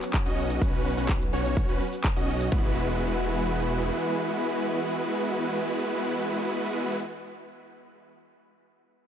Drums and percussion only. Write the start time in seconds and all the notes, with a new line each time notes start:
0.02 clap, closed hi-hat, cabasa
0.14 kick, clap, closed hi-hat, cabasa
0.26 closed hi-hat, cabasa
0.38 open hi-hat
0.50 closed hi-hat, cabasa
0.62 kick, closed hi-hat, cabasa
0.74 closed hi-hat, cabasa
0.85 open hi-hat
0.97 closed hi-hat, cabasa
1.09 kick, clap, closed hi-hat, cabasa
1.21 closed hi-hat, cabasa
1.33 open hi-hat
1.45 closed hi-hat, cabasa
1.57 kick, closed hi-hat, cabasa
1.69 closed hi-hat, cabasa
1.81 open hi-hat
1.92 closed hi-hat, cabasa
2.04 kick, clap, closed hi-hat, cabasa
2.16 closed hi-hat, cabasa
2.28 open hi-hat
2.40 closed hi-hat, cabasa
2.52 kick